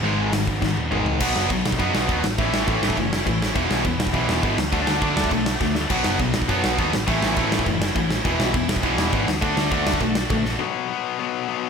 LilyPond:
<<
  \new Staff \with { instrumentName = "Distorted electric guitar" } { \time 4/4 \key gis \minor \tempo 4 = 204 <gis, dis gis b dis'>2 <gis, dis gis b dis'>8 <gis, dis gis b dis'>4 r8 | \key a \lydian <b, dis fis b dis'>4 <b, dis fis b dis'>4 <b, dis fis b dis'>4 <b, dis fis b dis'>8 r8 | <a, e a cis' e'>4 <a, e a cis' e'>4 <a, e a cis' e'>4 <a, e a cis' e'>4 | <e gis b e'>4 <e gis b e'>4 <e gis b e'>4 <e gis b e'>8 r8 |
<d fis a d'>4 <d fis a d'>4 <d fis a d'>4 <d fis a d'>4 | <b, fis b dis'>4 <b, fis b dis'>4 <b, fis b dis'>4 <b, fis b dis'>8 r8 | <a, e a cis' e'>4 <a, e a cis' e'>4 <a, e a cis' e'>4 <a, e a cis' e'>4 | <e gis b e'>4 <e gis b e'>4 <e gis b e'>4 <e gis b e'>8 r8 |
<d a d' fis'>4 <d a d' fis'>4 <d a d' fis'>4 <d a d' fis'>4 | r1 | }
  \new Staff \with { instrumentName = "Distorted electric guitar" } { \clef bass \time 4/4 \key gis \minor <gis, dis gis>4 <gis, dis>8 r8 <gis, dis>8 r8 <gis, dis gis>4 | \key a \lydian <b, fis b>4 <b, fis>8 r8 <b, fis b>4 <b, fis b>8 r8 | <a, e a>4 <a, e a>4 <a, e>8 r8 <a, e>8 r8 | <e, b, e>4 <e, b,>8 r8 <e, b, e>4 <e, b, e>8 r8 |
<d a d'>4 <d a d'>4 <d a>8 r8 <d a>8 r8 | <b, fis b>4 <b, fis>8 r8 <b, fis b>4 <b, fis b>8 r8 | <a, e a>4 <a, e a>4 <a, e>8 r8 <a, e>8 r8 | <e, b, e>4 <e, b,>8 r8 <e, b, e>4 <e, b, e>8 r8 |
<d a d'>4 <d a d'>4 <d a>8 r8 <d a>8 r8 | <b, fis b>4 <b, fis b>4 <b, fis b>4 <b, fis b>4 | }
  \new Staff \with { instrumentName = "Distorted electric guitar" } { \clef bass \time 4/4 \key gis \minor <gis, dis gis>4 <gis, dis>8 r8 <gis, dis>8 r8 <gis, dis gis>4 | \key a \lydian <b, fis b>4 <b, fis>8 r8 <b, fis b>4 <b, fis b>8 r8 | <a, e a>4 <a, e a>4 <a, e>8 r8 <a, e>8 r8 | <e, b, e>4 <e, b,>8 r8 <e, b, e>4 <e, b, e>8 r8 |
<d a d'>4 <d a d'>4 <d a>8 r8 <d a>8 r8 | <b, fis b>4 <b, fis>8 r8 <b, fis b>4 <b, fis b>8 r8 | <a, e a>4 <a, e a>4 <a, e>8 r8 <a, e>8 r8 | <e, b, e>4 <e, b,>8 r8 <e, b, e>4 <e, b, e>8 r8 |
<d a d'>4 <d a d'>4 <d a>8 r8 <d a>8 r8 | r1 | }
  \new Staff \with { instrumentName = "Picked electric bass" } { \clef bass \time 4/4 \key gis \minor gis,,8 gis,,8 gis,,8 gis,,8 gis,,8 dis,8 gis,,8 cis,8 | \key a \lydian b,,8 fis,,8 b,,8 b,,8 fis,8 b,,8 dis,8 a,,8 | a,,8 a,,8 a,,8 a,,8 fis,,4 a,,4 | e,,8 b,,8 e,,8 e,,8 b,,8 e,,8 gis,,8 d,8 |
d,8 d,8 d,8 d,8 b,,4 d,4 | b,,8 fis,,8 b,,8 b,,8 fis,8 b,,8 dis,8 a,,8 | a,,8 a,,8 a,,8 a,,8 fis,,4 a,,4 | e,,8 b,,8 e,,8 e,,8 b,,8 e,,8 gis,,8 d,8 |
d,8 d,8 d,8 d,8 b,,4 ais,,4 | r1 | }
  \new DrumStaff \with { instrumentName = "Drums" } \drummode { \time 4/4 r4 <hho sn>8 bd8 <bd sn>8 tommh8 toml8 tomfh8 | <cymc bd>8 sn8 <cymc bd>8 sn16 bd16 <cymc bd>8 sn8 <cymc bd>8 sn8 | <cymc bd>8 sn8 <cymc bd>8 sn16 bd16 <cymc bd>8 sn8 <cymc bd>8 sn8 | <cymc bd>8 sn8 <cymc bd>8 sn16 bd16 <cymc bd>8 sn8 <cymc bd>8 sn8 |
<cymc bd>8 sn8 <cymc bd>8 sn16 bd16 <cymc bd>8 sn8 <bd sn>8 sn8 | <cymc bd>8 sn8 <cymc bd>8 sn16 bd16 <cymc bd>8 sn8 <cymc bd>8 sn8 | <cymc bd>8 sn8 <cymc bd>8 sn16 bd16 <cymc bd>8 sn8 <cymc bd>8 sn8 | <cymc bd>8 sn8 <cymc bd>8 sn16 bd16 <cymc bd>8 sn8 <cymc bd>8 sn8 |
<cymc bd>8 sn8 <cymc bd>8 sn16 bd16 <cymc bd>8 sn8 <cymc bd>8 sn8 | r4 r4 r4 r4 | }
>>